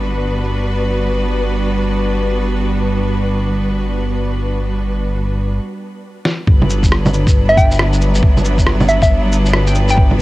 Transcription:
0.00 5.60 G1 medium
0.00 5.56 G3 medium
0.00 5.61 G3 medium
0.00 5.56 B3 medium
0.00 5.56 D4 medium
0.00 5.56 F#4 medium
0.00 5.56 B4 medium
6.25 snare medium
6.47 10.22 G1 medium
6.47 10.22 F#3 medium
6.47 10.22 G3 medium
6.47 10.22 B3 medium
6.47 10.22 D4 medium
6.47 10.22 B4 medium
6.47 kick loud
6.62 low bongo soft
6.70 cabasa medium
6.83 kick medium
6.83 shaker medium
6.92 cross-stick loud
7.06 low bongo medium
7.06 shaker soft
7.13 cabasa medium
7.27 kick loud
7.27 shaker medium
7.49 7.56 E5 medium
7.57 8.20 G5 medium
7.57 kick loud
7.57 cabasa medium
7.71 shaker medium
7.79 cross-stick loud
7.93 shaker soft
8.01 cabasa medium
8.15 shaker medium
8.23 kick loud
8.37 low bongo soft
8.37 shaker soft
8.45 cabasa medium
8.58 kick medium
8.58 shaker medium
8.66 cross-stick loud
8.80 low bongo medium
8.80 shaker soft
8.89 8.97 E5 medium
8.89 cabasa medium
9.02 9.08 E5 medium
9.02 kick loud
9.02 shaker medium
9.32 cabasa medium
9.46 shaker medium
9.53 cross-stick loud
9.67 9.87 G5 medium
9.67 shaker soft
9.75 cabasa medium
9.88 10.20 G5 medium
9.88 shaker medium
9.97 kick loud
10.11 low bongo soft

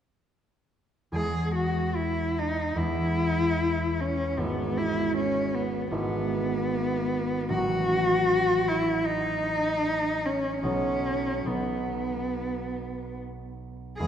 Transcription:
1.12 2.75 E2 soft
1.12 2.77 G#3 soft
1.12 2.77 B3 soft
1.12 1.53 G#4 soft
1.16 2.77 E4 soft
1.55 1.97 F#4 soft
1.96 2.40 E4 soft
2.39 2.78 D#4 soft
2.75 4.43 E2 soft
2.75 4.37 G#3 soft
2.75 4.37 B3 soft
2.75 4.02 E4 soft
2.81 4.38 E4 soft
4.01 4.41 C#4 soft
4.37 5.91 G#1 soft
4.37 5.90 G#3 soft
4.37 5.91 B3 soft
4.37 4.79 B3 soft
4.41 5.90 E4 soft
4.78 5.17 E4 medium
5.17 5.56 C#4 medium
5.54 5.93 B3 soft
5.91 7.55 G#1 soft
5.91 7.54 G#3 soft
5.91 7.55 B3 soft
5.91 7.54 E4 soft
5.95 7.50 B3 medium
7.49 10.65 A1 soft
7.49 10.62 F#3 soft
7.49 10.65 C#4 soft
7.54 8.70 F#4 medium
8.68 9.07 E4 medium
9.05 10.27 D#4 medium
10.26 10.62 C#4 medium
10.63 11.44 B1 soft
10.63 11.45 F#3 soft
10.63 11.44 B3 soft
10.63 11.50 C#4 medium
10.63 11.45 D#4 soft
11.45 14.02 B1 soft
11.45 14.03 F#3 soft
11.45 13.99 B3 soft
11.45 13.16 B3 soft
11.45 14.03 D#4 soft
13.98 14.07 E2 soft
13.98 14.07 G#3 soft
13.98 14.07 B3 soft
13.98 14.07 E4 soft
13.98 14.07 G#4 medium

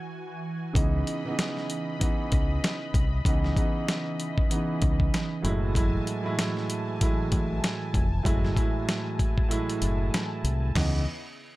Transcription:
0.00 0.72 E3 medium
0.00 0.71 F#4 medium
0.00 0.71 G#5 medium
0.73 1.01 C#2 loud
0.73 1.19 C#3 loud
0.73 1.20 E3 medium
0.73 1.20 B3 medium
0.73 1.21 D#4 loud
0.73 kick loud
0.73 closed hi-hat loud
0.77 10.72 E3 medium
0.77 5.41 D#5 medium
0.77 5.41 B5 medium
1.07 closed hi-hat medium
1.25 1.95 C#3 loud
1.25 1.96 E3 medium
1.25 1.96 B3 medium
1.25 1.96 D#4 loud
1.39 snare loud
1.39 closed hi-hat medium
1.57 snare soft
1.70 closed hi-hat medium
1.99 3.01 C#3 medium
1.99 3.02 E3 medium
1.99 3.02 B3 medium
1.99 3.03 D#4 loud
1.99 kick loud
1.99 closed hi-hat medium
2.32 2.58 C#2 loud
2.32 kick loud
2.32 closed hi-hat medium
2.64 snare loud
2.64 closed hi-hat medium
2.94 3.20 C2 medium
2.94 kick loud
2.94 closed hi-hat medium
3.25 3.52 C#2 loud
3.25 3.54 C#3 medium
3.25 3.55 E3 medium
3.25 3.55 B3 medium
3.25 3.56 D#4 loud
3.25 kick loud
3.25 closed hi-hat loud
3.44 snare soft
3.55 4.44 C#3 medium
3.55 4.44 E3 medium
3.55 4.44 B3 medium
3.55 4.45 D#4 loud
3.55 kick loud
3.55 closed hi-hat medium
3.88 snare loud
3.88 closed hi-hat loud
4.20 closed hi-hat medium
4.38 kick loud
4.49 5.44 C#3 medium
4.49 5.44 E3 medium
4.49 5.44 B3 medium
4.49 5.45 D#4 loud
4.49 closed hi-hat medium
4.82 5.08 C#2 loud
4.82 kick loud
4.82 closed hi-hat medium
5.00 kick medium
5.14 snare loud
5.14 closed hi-hat medium
5.42 5.97 F#1 loud
5.42 5.72 A2 medium
5.42 5.73 F#3 medium
5.42 5.73 G#3 medium
5.42 5.74 E4 loud
5.42 10.71 G#5 medium
5.42 10.71 A5 medium
5.42 closed hi-hat medium
5.74 6.20 A2 medium
5.74 6.20 F#3 medium
5.74 6.21 G#3 medium
5.74 6.21 E4 loud
5.74 kick loud
5.74 closed hi-hat loud
6.07 closed hi-hat medium
6.23 6.94 A2 medium
6.23 6.95 F#3 medium
6.23 6.95 G#3 medium
6.23 6.96 E4 loud
6.39 snare loud
6.39 closed hi-hat loud
6.57 snare soft
6.70 closed hi-hat medium
7.00 8.02 A2 medium
7.00 8.02 F#3 medium
7.00 8.03 G#3 medium
7.00 8.03 E4 loud
7.00 kick medium
7.00 closed hi-hat medium
7.32 7.58 A1 loud
7.32 kick loud
7.32 closed hi-hat medium
7.64 snare loud
7.64 closed hi-hat medium
7.94 8.20 F1 medium
7.94 kick loud
7.94 closed hi-hat medium
8.23 8.51 F#1 loud
8.23 8.53 A2 medium
8.23 8.53 F#3 medium
8.23 8.54 G#3 medium
8.23 8.55 E4 loud
8.23 kick loud
8.23 closed hi-hat loud
8.45 snare soft
8.54 9.43 A2 medium
8.54 9.43 F#3 medium
8.54 9.44 G#3 medium
8.54 9.44 E4 loud
8.54 kick medium
8.54 closed hi-hat medium
8.89 snare loud
8.89 closed hi-hat medium
9.19 kick loud
9.19 closed hi-hat medium
9.38 kick loud
9.48 10.66 A2 medium
9.48 10.67 F#3 medium
9.48 10.67 G#3 medium
9.48 10.67 E4 loud
9.48 closed hi-hat medium
9.70 closed hi-hat medium
9.82 10.08 F#1 medium
9.82 closed hi-hat medium
10.14 snare loud
10.14 closed hi-hat medium
10.44 10.70 C2 medium
10.44 closed hi-hat medium
10.75 11.04 C#2 loud
10.75 10.99 C#3 medium
10.75 11.04 C#3 medium
10.75 11.00 E3 medium
10.75 11.04 B3 medium
10.75 11.00 B3 medium
10.75 11.00 D#4 medium
10.75 11.04 E4 medium
10.75 11.04 D#5 medium
10.75 snare loud
10.75 floor tom loud
10.75 crash medium

